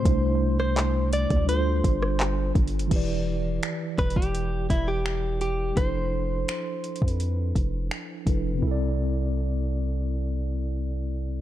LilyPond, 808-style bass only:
\new Staff \with { instrumentName = "808-style bass" } { \clef bass \time 4/4 \key c \major \tempo 4 = 84 c,4.~ c,16 d,8. g,,4 g,,8 | e,,4 r8 e,,16 e,,8. e,,4. | f,,4 r8. f,8. f,,8 r8 f,,8 | c,1 | }